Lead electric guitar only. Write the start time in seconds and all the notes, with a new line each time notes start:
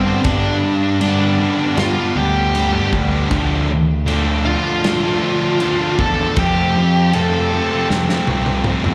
Already playing: C4 C5
0.25 D4 D5
1.01 D4 D5
1.79 F4 F5
2.17 G4 G5
4.45 F4 F5
6.00 A4 A5
6.39 G4 G5
7.15 A4 A5